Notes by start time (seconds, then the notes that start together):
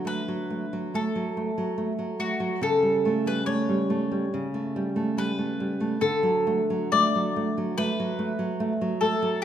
Already playing: D3 F#3
0.05 A3 B4
0.28 F#3
0.50 A3
0.73 F#3
0.94 A3 A4
1.16 F#3
1.37 A3
1.58 F#3
1.78 A3
1.99 F#3
2.19 A3 F#4
2.40 F#3
2.61 C#3 A4
2.83 G3
3.05 A3
3.26 G3 B4
3.46 A3 C#5
3.69 G3
3.90 A3
4.11 G3
4.34 C#3
4.54 A3
4.76 G3
4.96 A3
5.17 G3 B4
5.38 A3
5.60 G3
5.80 A3
6.01 D3 A4
6.23 F#3
6.47 A3
6.70 F#3
6.92 A3 D5
7.15 F#3
7.36 A3
7.58 F#3
7.78 A3 B4
8.00 F#3
8.19 A3
8.39 F#3
8.60 A3
8.81 F#3
9.01 A3 A4
9.22 F#3